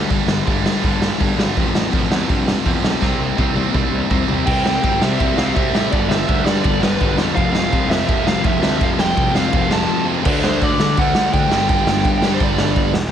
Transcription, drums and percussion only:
0.10 kick loud
0.10 open hi-hat medium
0.28 snare loud
0.47 kick loud
0.47 open hi-hat medium
0.66 snare loud
0.84 kick loud
0.84 open hi-hat medium
1.02 snare loud
1.21 kick loud
1.21 open hi-hat medium
1.40 snare loud
1.57 kick loud
1.57 open hi-hat medium
1.75 snare loud
1.93 kick loud
1.93 open hi-hat medium
2.12 snare loud
2.30 kick loud
2.30 open hi-hat medium
2.48 snare loud
2.66 kick loud
2.66 open hi-hat medium
2.84 snare loud
3.02 kick loud
3.02 snare medium
3.38 kick loud
3.38 high tom medium
3.56 high tom medium
3.74 kick loud
3.74 mid tom medium
4.10 kick loud
4.10 floor tom medium
4.29 floor tom medium
4.47 kick loud
4.47 crash loud
4.66 snare loud
4.84 kick loud
4.84 ride medium
5.02 snare loud
5.20 kick loud
5.20 ride medium
5.38 snare loud
5.56 kick loud
5.56 ride medium
5.75 snare loud
5.92 kick loud
5.92 ride medium
6.11 snare loud
6.29 kick loud
6.29 ride medium
6.47 snare loud
6.64 kick loud
6.64 ride medium
6.83 snare loud
7.01 kick loud
7.01 ride medium
7.18 snare loud
7.37 kick loud
7.37 ride medium
7.55 snare loud
7.73 kick loud
7.73 ride medium
7.91 snare loud
8.09 kick loud
8.09 ride medium
8.27 snare loud
8.44 kick loud
8.44 ride medium
8.63 snare loud
8.81 kick loud
8.81 ride medium
8.99 snare loud
9.17 kick loud
9.17 ride medium
9.35 snare loud
9.53 kick loud
9.53 ride medium
9.71 snare loud
10.25 kick loud
10.25 crash loud
10.25 crash medium
10.44 snare loud
10.61 kick loud
10.61 crash medium
10.80 snare loud
10.97 kick loud
10.97 crash medium
11.15 snare loud
11.34 kick loud
11.34 crash medium
11.51 snare loud
11.69 kick loud
11.69 crash medium
11.87 snare loud
12.05 kick loud
12.05 crash medium
12.22 snare loud
12.40 kick loud
12.40 crash medium
12.58 snare loud
12.76 kick loud
12.76 crash medium
12.94 snare loud

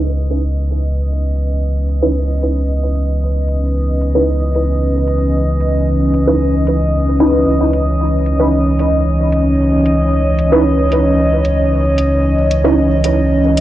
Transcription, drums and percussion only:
0.30 closed hi-hat medium
0.83 closed hi-hat medium
1.36 closed hi-hat medium
1.89 closed hi-hat medium
2.42 closed hi-hat medium
2.95 closed hi-hat medium
3.48 closed hi-hat medium
4.01 closed hi-hat medium
4.55 closed hi-hat medium
5.08 closed hi-hat medium
5.61 closed hi-hat medium
6.14 closed hi-hat medium
6.67 closed hi-hat medium
7.20 closed hi-hat medium
7.73 closed hi-hat medium
8.26 closed hi-hat medium
8.79 closed hi-hat medium
9.32 closed hi-hat medium
9.86 closed hi-hat medium
10.39 closed hi-hat medium
10.92 closed hi-hat medium
11.45 closed hi-hat medium
11.98 closed hi-hat medium
12.51 closed hi-hat medium
13.04 closed hi-hat medium
13.57 closed hi-hat medium

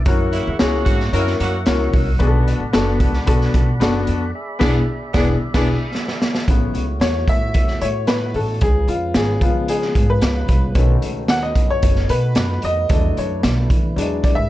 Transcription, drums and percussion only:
0.06 kick loud
0.06 closed hi-hat medium
0.33 closed hi-hat medium
0.59 snare loud
0.59 closed hi-hat medium
0.86 kick medium
0.86 closed hi-hat medium
1.00 snare soft
1.13 closed hi-hat medium
1.27 snare soft
1.40 closed hi-hat medium
1.66 snare loud
1.66 closed hi-hat medium
1.93 kick loud
1.93 open hi-hat medium
2.20 kick loud
2.20 closed hi-hat medium
2.48 closed hi-hat medium
2.73 snare loud
2.73 closed hi-hat medium
3.00 kick medium
3.00 closed hi-hat medium
3.14 snare soft
3.27 kick loud
3.27 closed hi-hat medium
3.41 snare soft
3.54 kick loud
3.54 closed hi-hat medium
3.81 snare loud
3.81 closed hi-hat medium
4.07 closed hi-hat medium
4.61 kick loud
4.61 snare loud
4.61 crash medium
5.14 kick loud
5.14 snare loud
5.54 kick loud
5.54 snare loud
5.54 crash medium
5.95 snare medium
6.08 snare medium
6.22 snare medium
6.35 snare medium
6.48 kick loud
6.48 closed hi-hat medium
6.75 closed hi-hat medium
7.01 snare loud
7.01 closed hi-hat medium
7.28 kick medium
7.28 closed hi-hat medium
7.54 kick loud
7.54 closed hi-hat medium
7.68 snare soft
7.81 closed hi-hat medium
8.07 snare loud
8.07 closed hi-hat medium
8.34 open hi-hat medium
8.61 kick loud
8.61 closed hi-hat medium
8.88 closed hi-hat medium
9.14 snare loud
9.14 closed hi-hat medium
9.41 kick medium
9.41 closed hi-hat medium
9.68 closed hi-hat medium
9.82 snare soft
9.95 kick loud
9.95 closed hi-hat medium
10.21 snare loud
10.21 closed hi-hat medium
10.48 kick medium
10.48 closed hi-hat medium
10.75 kick loud
10.75 closed hi-hat medium
11.02 closed hi-hat medium
11.28 snare loud
11.28 closed hi-hat medium
11.55 kick medium
11.55 closed hi-hat medium
11.82 kick loud
11.82 closed hi-hat medium
11.96 snare soft
12.09 closed hi-hat medium
12.35 snare loud
12.35 closed hi-hat medium
12.62 closed hi-hat medium
12.89 kick loud
12.89 closed hi-hat medium
13.17 closed hi-hat medium
13.43 snare loud
13.43 closed hi-hat medium
13.70 kick medium
13.70 closed hi-hat medium
13.98 closed hi-hat medium
14.24 kick loud
14.24 closed hi-hat medium

